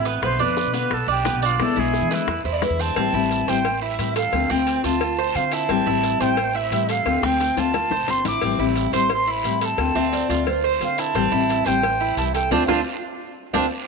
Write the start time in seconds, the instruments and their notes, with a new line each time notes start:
Already playing: upright bass A1, nylon-string guitar E3 A3 C4 E4
0.05 cuban tres B3, high bongo, short guiro
0.22 upright bass B1, nylon-string guitar B2 D3 B3 D4 F4, cuban tres B3, flute C5, high bongo, long guiro
0.39 upright bass F2, nylon-string guitar D3 B3 D4 F4, cuban tres D4, flute B4, high bongo
0.57 high bongo, short guiro
0.65 upright bass B2
0.73 nylon-string guitar D3 B3 D4 F4, cuban tres B3, high bongo, short guiro
0.90 upright bass B1, flute A4, muted nylon-string guitar stroke, high bongo, long guiro
1.07 upright bass B1, cuban tres D4, flute G4
1.25 nylon-string guitar D3 B3 D4 F4, cuban tres B3, high bongo, low bongo, short guiro
1.33 upright bass B1
1.42 cuban tres D4, flute F4, high bongo, short guiro
1.59 upright bass E2, nylon-string guitar B2 D3 G#3 B3 E4, flute A4, high bongo, long guiro
1.76 upright bass B1, nylon-string guitar D3 G#3 B3 E4, cuban tres E4, flute G#4
1.94 high bongo, short guiro
2.01 upright bass E3
2.10 nylon-string guitar D3 G#3 B3 E4, flute E4, cuban tres B4, high bongo, short guiro
2.27 upright bass E2, muted nylon-string guitar stroke, high bongo, long guiro
2.44 upright bass E2, cuban tres E4, nylon-string guitar C5, high bongo
2.53 nylon-string guitar D5
2.61 nylon-string guitar D3 G#3 B3 E4 B4, flute E5, high bongo, low bongo, short guiro
2.70 upright bass E2
2.79 cuban tres C4, flute A5, high bongo, short guiro
2.96 upright bass A1, nylon-string guitar E3 G3 C4 E4, cuban tres C4, cowbell, long guiro
3.13 upright bass A1, nylon-string guitar G3 C4 E4, cuban tres E4
3.31 cowbell, short guiro
3.47 upright bass A1, nylon-string guitar G3 C4 E4, cuban tres C5, flute G5, cowbell, short guiro
3.65 muted nylon-string guitar stroke, cowbell, long guiro
3.82 cuban tres E4, flute E5
3.98 upright bass A2, nylon-string guitar E3 G3 C4 E4, cowbell, short guiro
4.16 cuban tres A4, flute F5, cowbell, short guiro
4.33 upright bass D2, nylon-string guitar D3 A3 C4 F4, cowbell, long guiro
4.50 upright bass D2, nylon-string guitar A3 C4 F4, cuban tres C4, flute G5
4.67 cowbell, short guiro
4.84 upright bass D2, nylon-string guitar A3 C4 F4, cuban tres F4, flute A5, cowbell, short guiro
5.01 muted nylon-string guitar stroke, cowbell, long guiro
5.19 cuban tres C5
5.35 upright bass D3, nylon-string guitar D3 A3 C4 F4, flute F5, cowbell, short guiro
5.51 cuban tres E4, flute A5, cowbell, short guiro
5.69 upright bass A1, nylon-string guitar E3 G3 C4 E4, cuban tres C4, cowbell, long guiro
5.86 upright bass A1, nylon-string guitar G3 C4 E4, cuban tres E4
6.03 cowbell, short guiro
6.20 upright bass A1, nylon-string guitar G3 C4 E4, cuban tres C5, flute G5, cowbell, short guiro
6.37 muted nylon-string guitar stroke, cowbell, long guiro
6.55 cuban tres E4, flute E5
6.71 upright bass A2, nylon-string guitar E3 G3 C4 E4, cowbell, short guiro
6.89 cuban tres A4, flute F5, cowbell, short guiro
7.05 upright bass D2, nylon-string guitar D3 A3 C4 F4, cowbell, high bongo, long guiro
7.22 upright bass D2, nylon-string guitar A3 C4 F4, cuban tres C4, flute G5, high bongo
7.40 cowbell, high bongo, short guiro
7.56 upright bass D2, nylon-string guitar A3 C4 F4, cuban tres F4, flute A5, cowbell, low bongo, short guiro
7.74 muted nylon-string guitar stroke, cowbell, low bongo, long guiro
7.90 upright bass F1, cuban tres C5, low bongo
8.07 upright bass G1, nylon-string guitar D3 A3 C4 F4, flute C6, cowbell, low bongo, short guiro
8.25 upright bass A1, cuban tres E4, flute D6, cowbell, low bongo, short guiro
8.41 upright bass A1, nylon-string guitar E3 G3 C4 E4, cuban tres C4, cowbell, long guiro
8.59 upright bass A1, nylon-string guitar G3 C4 E4, cuban tres E4
8.76 cowbell, short guiro
8.93 upright bass A1, nylon-string guitar G3 C4 E4, cuban tres C5, flute C6, cowbell, short guiro
9.10 flute C6, muted nylon-string guitar stroke, cowbell, long guiro
9.27 cuban tres E4, flute B5
9.44 upright bass A2, nylon-string guitar E3 G3 C4 E4, cowbell, short guiro
9.61 cuban tres A4, flute A5, cowbell, short guiro
9.78 upright bass D2, nylon-string guitar D3 A3 C4 F4, cowbell, long guiro
9.95 upright bass D2, nylon-string guitar A3 C4 F4 E5, cuban tres C4
10.13 nylon-string guitar D5, cowbell, short guiro
10.29 upright bass D2, nylon-string guitar A3 C4 F4, cuban tres F4, cowbell, short guiro
10.46 nylon-string guitar C5, muted nylon-string guitar stroke, cowbell, long guiro
10.64 cuban tres C5
10.80 upright bass D3, nylon-string guitar D3 A3 C4 F4, flute F5, cowbell, short guiro
10.98 cuban tres E4, flute A5, cowbell, short guiro
11.14 upright bass A1, nylon-string guitar E3 G3 C4 E4, cuban tres C4, cowbell, long guiro
11.32 upright bass A1, nylon-string guitar G3 C4 E4, cuban tres E4
11.49 cowbell, short guiro
11.66 upright bass A1, nylon-string guitar G3 C4 E4, cuban tres C5, flute G5, cowbell, short guiro
11.82 muted nylon-string guitar stroke, cowbell, long guiro
12.01 cuban tres E4
12.17 upright bass C2, nylon-string guitar E3 G3 C4 E4, flute A5, cowbell, short guiro
12.33 cuban tres A4, flute G5, cowbell, short guiro
12.51 upright bass D2, nylon-string guitar A3 C4 D4 C5 D5 F5, cuban tres C4 D4 F4, flute A5, cowbell, long guiro
12.68 upright bass D2, nylon-string guitar A3 C4 D4 C5 D5 F5, cuban tres C4 D4 F4, flute A5, cowbell, long guiro
13.53 upright bass D2, nylon-string guitar A3 C4 D4 C5 D5 F5, cuban tres C4 D4 F4, flute A5, cowbell, long guiro